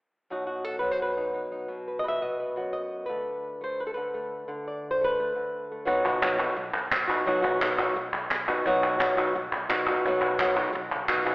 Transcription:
0.30 nylon-string guitar B2 F#3 D#4 F#4
0.47 nylon-string guitar F#4
0.65 nylon-string guitar A4
0.79 nylon-string guitar F#3 B4
0.91 nylon-string guitar C5
1.02 nylon-string guitar B4
1.17 nylon-string guitar B2 D#4
1.34 nylon-string guitar D#4
1.52 nylon-string guitar D#4
1.68 nylon-string guitar B2
1.88 nylon-string guitar B4
1.99 nylon-string guitar D#5
2.04 nylon-string guitar B4
2.08 nylon-string guitar E5
2.21 nylon-string guitar B3 D#5
2.40 nylon-string guitar B4
2.56 nylon-string guitar F#2 F#4
2.73 nylon-string guitar D#5
3.06 nylon-string guitar D3 A3 B4
3.61 nylon-string guitar A3 C5
3.80 nylon-string guitar B4
3.87 nylon-string guitar A4
3.94 nylon-string guitar D3 B4
4.14 nylon-string guitar A3
4.48 nylon-string guitar D3
4.68 nylon-string guitar D5
4.91 nylon-string guitar C5
5.01 nylon-string guitar A3 B4
5.20 nylon-string guitar A3
5.35 nylon-string guitar D3
5.72 nylon-string guitar A3
5.85 fingered electric bass B1, nylon-string guitar B2 F#3 B3 D#4 F#4, cajon bass, cajon slap
6.05 nylon-string guitar B3 D#4 F#4
6.22 nylon-string guitar F#3 B3 D#4 F#4, cajon slap, clap
6.38 nylon-string guitar B3 D#4 F#4, cajon bass, cajon slap
6.56 fingered electric bass B1, muted nylon-string guitar stroke, cajon slap
6.75 fingered electric bass B1
6.92 fingered electric bass B1, cajon slap, clap
7.08 nylon-string guitar B3 D#4 F#4, clap
7.26 fingered electric bass B1, nylon-string guitar B2 F#3 B3 D#4 F#4, cajon bass
7.42 nylon-string guitar B3 D#4 F#4, clap
7.60 nylon-string guitar F#3 B3 D#4 F#4, cajon slap, clap
7.78 nylon-string guitar B3 D#4 F#4, cajon bass, cajon slap, clap
7.96 fingered electric bass B1, muted nylon-string guitar stroke
8.13 fingered electric bass B1, clap
8.31 fingered electric bass B1, cajon slap, clap
8.48 nylon-string guitar B3 D#4 F#4, clap
8.66 fingered electric bass B1, nylon-string guitar B2 F#3 B3 D#4 F#4, cajon bass, cajon slap
8.84 clap
8.99 nylon-string guitar F#3 B3 D#4 F#4, cajon slap, clap
9.17 nylon-string guitar B3 D#4 F#4, cajon bass, cajon slap, clap
9.35 fingered electric bass B1, muted nylon-string guitar stroke
9.53 fingered electric bass B1, clap
9.69 fingered electric bass B1, nylon-string guitar B3 D#4 F#4, cajon slap, clap
9.87 nylon-string guitar B3 D#4 F#4, clap
10.05 fingered electric bass B1, nylon-string guitar B2 F#3 B3 D#4 F#4, cajon bass, cajon slap
10.21 clap
10.40 nylon-string guitar F#3 B3 D#4 F#4, cajon slap, clap
10.56 nylon-string guitar B3 D#4 F#4, clap
10.73 fingered electric bass B1, muted nylon-string guitar stroke, cajon slap
10.92 fingered electric bass B1, cajon bass, clap
11.09 fingered electric bass B1, nylon-string guitar B3 D#4 F#4, clap
11.25 nylon-string guitar B3 D#4 F#4, cajon bass, clap

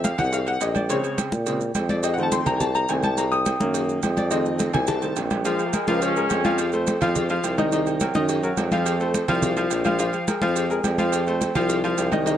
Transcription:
Already playing: tuba F2
0.04 grand piano F5, cowbell, high conga, low timbale, low agogo, maracas
0.18 tuba C2, grand piano F#5, cowbell, low conga, low agogo, maracas
0.33 grand piano F5, cowbell, high conga, maracas
0.47 grand piano F#5, high conga, low agogo, maracas
0.61 tuba A#1, grand piano D#5, cowbell, high conga, low timbale, low agogo, maracas
0.75 grand piano D5, high conga, low agogo, maracas
0.89 grand piano C#3 G#3 C4 C#5, cowbell, high conga, low agogo, maracas
1.04 high conga, low agogo, maracas
1.18 cowbell, high conga, low timbale, low agogo, maracas
1.32 tuba A#2, high conga, maracas
1.46 grand piano C#3 G#3 C4, cowbell, high conga, low agogo, maracas
1.60 high conga, maracas
1.75 tuba F2, cowbell, high conga, low timbale, low agogo, maracas
1.89 grand piano D5, cowbell, high conga, low agogo, maracas
2.03 grand piano D#5, cowbell, high conga, low agogo, maracas
2.14 grand piano F#5, maracas
2.18 grand piano D#3 A3 C4, high conga
2.23 grand piano A5
2.32 grand piano C6, cowbell, high conga, low timbale, low agogo, maracas
2.46 tuba C2, grand piano A#5, cowbell, low conga, low agogo, maracas
2.56 grand piano G#5
2.60 grand piano A5, cowbell, high conga, low conga, maracas
2.75 grand piano A#5, high conga, low agogo, maracas
2.89 tuba C2, grand piano D#3 A3 C4 G#5, cowbell, high conga, low timbale, low agogo, maracas
3.03 grand piano A5, high conga, low agogo, maracas
3.17 grand piano A#5, cowbell, high conga, low agogo, maracas
3.32 grand piano D#6, high conga, low agogo, maracas
3.46 cowbell, high conga, low timbale, low agogo, maracas
3.60 tuba F#2, grand piano D#3 F#3 A#3, high conga, maracas
3.74 cowbell, high conga, low agogo, maracas
3.89 high conga, maracas
4.03 tuba F2, cowbell, high conga, low timbale, low agogo, maracas
4.17 grand piano D5, cowbell, high conga, low agogo, maracas
4.31 grand piano D#3 A3 C4 D#5, cowbell, high conga, low agogo, maracas
4.46 high conga, maracas
4.59 cowbell, high conga, low timbale, low agogo, maracas
4.73 tuba C2, grand piano G#5, cowbell, low conga, high timbale, low agogo, maracas
4.87 grand piano A5, cowbell, high bongo, high conga, low conga, maracas
5.02 grand piano D#3 A3 C4, high conga, low agogo, maracas
5.16 tuba A#1, cowbell, low bongo, high conga, low timbale, low agogo, maracas
5.30 low bongo, high conga, low timbale, low agogo, maracas
5.45 grand piano F3 F4 F5, trombone section G#3, cowbell, high conga, low agogo, maracas
5.59 high conga, low agogo, maracas
5.66 trombone section A#3
5.73 grand piano G#3 G#4 A#4, trombone section G#3, cowbell, high conga, low timbale, low agogo, maracas
5.88 tuba C#2, grand piano F3 F4 F5, trombone section A#3, high conga, maracas
6.02 trombone section C#4, cowbell, high conga, low agogo, maracas
6.16 grand piano G#3 G#4 A#4, high conga, maracas
6.30 tuba F2, cowbell, high conga, low timbale, low agogo, maracas
6.44 grand piano F3 F4 F5, cowbell, high conga, low agogo, maracas
6.58 cowbell, high conga, low agogo, maracas
6.73 grand piano A3 A4 C5, high conga, maracas
6.87 cowbell, high conga, low timbale, low agogo, maracas
7.01 tuba F2, grand piano F3 F4 F5, cowbell, low conga, low agogo, maracas
7.15 cowbell, high conga, low conga, maracas
7.29 grand piano F3 F4 F5, high conga, low agogo, maracas
7.44 tuba C2, cowbell, high conga, low timbale, low agogo, maracas
7.58 grand piano D#3 D#4 D#5, high conga, low agogo, maracas
7.72 grand piano D#3 D#4 D#5, cowbell, high conga, low agogo, maracas
7.86 high conga, low agogo, maracas
8.00 grand piano F#3 F#4 A#4, cowbell, high conga, low timbale, low agogo, maracas
8.14 tuba F#2, grand piano D#3 D#4 D#5, high conga, maracas
8.29 cowbell, high conga, low agogo, maracas
8.43 grand piano F#3 F#4 A#4, high conga, maracas
8.57 tuba F2, cowbell, high conga, low timbale, low agogo, maracas
8.71 grand piano F3 F4 F5, cowbell, high conga, low agogo, maracas
8.86 cowbell, high conga, low agogo, maracas
9.00 grand piano A3 A4 C5, high conga, maracas
9.14 cowbell, high conga, low timbale, low agogo, maracas
9.28 tuba C2, grand piano F3 F4 F5, cowbell, low conga, low agogo, maracas
9.42 cowbell, high conga, low conga, maracas
9.57 grand piano F3 F4 F5, high conga, low agogo, maracas
9.71 tuba A#1, cowbell, high conga, low timbale, low agogo, maracas
9.85 grand piano F3 F4 F5, high conga, low agogo, maracas
9.99 grand piano F3 F4 F5, cowbell, high conga, low agogo, maracas
10.13 high conga, low agogo, maracas
10.27 grand piano G#3 G#4 A#4, cowbell, high conga, low timbale, low agogo, maracas
10.42 tuba F2, grand piano F3 F4 F5, high conga, maracas
10.56 cowbell, high conga, low agogo, maracas
10.70 grand piano G#3 G#4 A#4, high conga, maracas
10.84 tuba F2, cowbell, high conga, low timbale, low agogo, maracas
10.98 grand piano F3 F4 F5, cowbell, high conga, low agogo, maracas
11.12 cowbell, high conga, low agogo, maracas
11.27 grand piano A3 A4 C5, high conga, maracas
11.41 cowbell, high conga, low timbale, low agogo, maracas
11.55 tuba C2, grand piano F3 F4 F5, cowbell, low conga, low agogo, maracas
11.69 cowbell, high conga, maracas
11.84 grand piano F3 F4 F5, high conga, low agogo, maracas
11.98 tuba C2, cowbell, high conga, low timbale, low agogo, maracas
12.12 grand piano D#3 D#4 D#5, high conga, low agogo, maracas
12.26 grand piano D#3 D#4 D#5, cowbell, high conga, low agogo, maracas

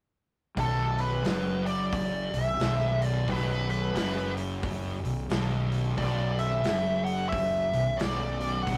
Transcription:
0.56 fingered electric bass B0, distorted electric guitar B1, lead electric guitar A4, kick, open hi-hat
0.98 lead electric guitar B4, open hi-hat
1.25 fingered electric bass F#1, distorted electric guitar F#2, snare, open hi-hat
1.66 lead electric guitar D5, open hi-hat
1.92 lead electric guitar D5, kick, open hi-hat
2.33 fingered electric bass B0, distorted electric guitar B1, lead electric guitar E5, open hi-hat
2.60 fingered electric bass B0, distorted electric guitar B1, snare, open hi-hat
3.02 lead electric guitar D5, open hi-hat
3.28 fingered electric bass B0, distorted electric guitar B1, lead electric guitar B4, kick, open hi-hat
3.69 lead electric guitar B4, open hi-hat
3.95 fingered electric bass F#1, distorted electric guitar F#2, snare, open hi-hat
4.37 open hi-hat
4.63 kick, open hi-hat
5.03 fingered electric bass B0, distorted electric guitar B1, open hi-hat
5.29 fingered electric bass B0, distorted electric guitar B1, snare, open hi-hat
5.72 open hi-hat
5.97 fingered electric bass B0, distorted electric guitar B1, lead electric guitar D5, kick, open hi-hat
6.39 lead electric guitar E5, open hi-hat
6.64 fingered electric bass F#1, distorted electric guitar F#2, snare, open hi-hat
7.05 lead electric guitar F#5, open hi-hat
7.29 lead electric guitar E5, kick, open hi-hat
7.73 fingered electric bass B0, distorted electric guitar B1, open hi-hat
7.97 fingered electric bass B0, distorted electric guitar B1, lead electric guitar D5, snare, open hi-hat
8.41 open hi-hat
8.63 lead electric guitar F#5
8.67 fingered electric bass B0, distorted electric guitar B1, kick, open hi-hat

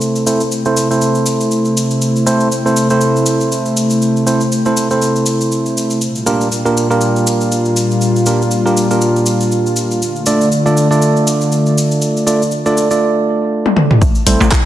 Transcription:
Already playing: analog synth pad C3 A3 E4, tine electric piano A3 C4 E4 A4 C5
0.01 cabasa
0.15 cabasa
0.27 tine electric piano A3 C4 E4 A4 C5, cabasa
0.40 cabasa
0.52 cabasa
0.65 tine electric piano A3 C4 E4 A4 C5, cabasa
0.77 cabasa
0.91 tine electric piano A3 C4 E4 A4 C5, cabasa
1.01 cabasa
1.15 cabasa
1.26 cabasa
1.41 cabasa
1.51 cabasa
1.65 cabasa
1.77 cabasa
1.91 cabasa
2.02 cabasa
2.16 cabasa
2.26 tine electric piano A3 C4 E4 A4 C5, cabasa
2.40 cabasa
2.52 cabasa
2.66 tine electric piano A3 C4 E4 A4 C5, cabasa
2.76 cabasa
2.90 tine electric piano A3 C4 E4 A4 C5, cabasa
3.01 cabasa
3.16 cabasa
3.26 cabasa
3.40 cabasa
3.52 cabasa
3.66 cabasa
3.77 cabasa
3.90 cabasa
4.02 cabasa
4.16 cabasa
4.27 tine electric piano A3 C4 E4 A4 C5, cabasa
4.41 cabasa
4.52 cabasa
4.65 tine electric piano A3 C4 E4 A4 C5, cabasa
4.77 cabasa
4.91 tine electric piano A3 C4 E4 A4 C5, cabasa
5.02 cabasa
5.16 cabasa
5.26 cabasa
5.41 cabasa
5.52 cabasa
5.66 cabasa
5.77 cabasa
5.90 cabasa
6.01 analog synth pad A#2 G3 F4, cabasa
6.15 cabasa
6.26 tine electric piano A#3 D4 F4 G4 A#4, cabasa
6.41 cabasa
6.52 cabasa
6.65 tine electric piano A#3 D4 F4 G4 A#4, cabasa
6.77 cabasa
6.90 tine electric piano A#3 D4 F4 G4 A#4, cabasa
7.01 cabasa
7.16 cabasa
7.27 cabasa
7.41 cabasa
7.52 cabasa
7.65 cabasa
7.76 cabasa
7.91 cabasa
8.01 cabasa
8.16 cabasa
8.26 tine electric piano A#3 D4 F4 G4 A#4, cabasa
8.42 cabasa
8.51 cabasa
8.66 tine electric piano A#3 D4 F4 G4 A#4, cabasa
8.77 cabasa
8.91 tine electric piano A#3 D4 F4 G4 A#4, cabasa
9.01 cabasa
9.16 cabasa
9.26 cabasa
9.40 cabasa
9.52 cabasa
9.66 cabasa
9.76 cabasa
9.91 cabasa
10.02 analog synth pad D3 A3, cabasa
10.16 cabasa
10.26 tine electric piano A3 D4 F4 A4 D5, cabasa
10.41 cabasa
10.52 cabasa
10.66 tine electric piano A3 D4 F4 A4 D5, cabasa
10.77 cabasa
10.91 tine electric piano A3 D4 F4 A4 D5, cabasa
11.02 cabasa
11.16 cabasa
11.27 cabasa
11.41 cabasa
11.52 cabasa
11.66 cabasa
11.78 cabasa
11.91 cabasa
12.02 cabasa
12.17 cabasa
12.27 tine electric piano A3 D4 F4 A4 D5, cabasa
12.42 cabasa
12.51 cabasa
12.66 tine electric piano A3 D4 F4 A4 D5, cabasa
12.77 cabasa
12.91 tine electric piano A3 D4 F4 A4 D5, cabasa
13.66 high tom
13.77 mid tom
13.91 mid tom
14.02 808-style bass A1, analog synth pad C3 A3 E4, synth pluck A3, kick, high conga, cabasa
14.15 cabasa
14.26 808-style bass A1, synth pluck G3, tine electric piano A3 C4 E4 A4 C5, open hi-hat, cabasa
14.40 808-style bass A1, darbuka ka, darbuka tek, high conga, cabasa
14.51 synth pluck E4, kick, cross-stick, clap, darbuka ka, cabasa

